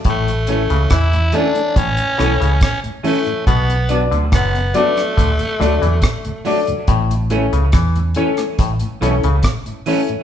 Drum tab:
HH |xxxxxxxxxxxxxxox|xxxxxxxxxxxxxxox|xxxxxxxxxxxxxxox|
SD |----r-----r-r---|----r--r--r-r---|----r--r--r-r---|
BD |o---o---o---o---|o---o---o---o---|o---o---o---o---|